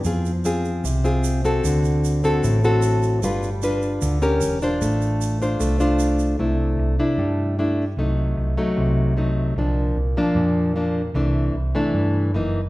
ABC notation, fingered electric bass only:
X:1
M:4/4
L:1/8
Q:1/4=151
K:C
V:1 name="Fingered electric bass" clef=bass
F,,4 C,,4 | D,,4 A,,,4 | G,,,4 D,,2 E,,,2 | A,,,4 C,,4 |
C,,2 C,, z G,,4 | C,,2 C,, z C,,4 | C,,2 C,, z F,,4 | C,,2 C,, z G,,2 ^F,,,2 |]